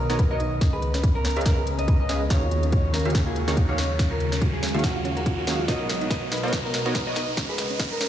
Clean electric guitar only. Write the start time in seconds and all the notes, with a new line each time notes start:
Already playing: A#4
0.31 D#5
0.73 B4
1.15 A#4
1.46 A#4
1.79 D#5
2.00 D#5
2.30 C#5
2.73 C#5
2.94 A#4
3.27 G#4
3.69 C#5
4.11 A#4
4.53 G#4
4.84 F#4
5.17 F#4
5.38 F#4
5.68 D#5
6.10 D#5
6.32 B4
6.65 A#4
7.07 D#5
7.49 B4
7.91 A#4